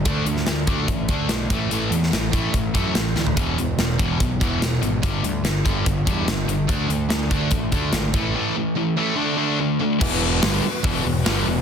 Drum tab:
CC |----------------|----------------|----------------|----------------|
HH |x-x-x-x-x-x-x-x-|x-x-x-x-x-x-x---|x-x-x-x-x-x-x-x-|x-x-x-x-x-x-x-x-|
SD |---oo-------o---|---oo-------o-o-|----o-------o---|----o-------o---|
FT |----------------|---------------o|----------------|----------------|
BD |o-----o-o-o---o-|------o-o-o-----|o-----o-o-o-----|o-----o-o-o-----|

CC |----------------|----------------|x---------------|
HH |x-x-x-x-x-x-x-x-|----------------|----o---o---o---|
SD |----o-------o---|----------------|----o-------o---|
FT |----------------|----------------|----------------|
BD |o-----o-o-o---o-|----------------|o-------o-------|